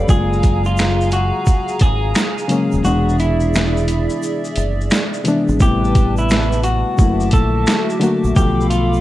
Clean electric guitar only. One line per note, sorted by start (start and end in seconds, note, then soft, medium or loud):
0.10 0.63 G#4 loud
0.66 1.09 F4 medium
1.13 1.81 F#4 medium
1.81 2.35 G#4 medium
2.85 3.16 F#4 medium
3.20 4.41 E4 medium
5.62 6.15 G4 loud
6.18 6.62 E4 medium
6.64 7.29 F#4 medium
7.33 7.86 A4 medium
8.36 8.67 G4 medium
8.70 9.01 F4 medium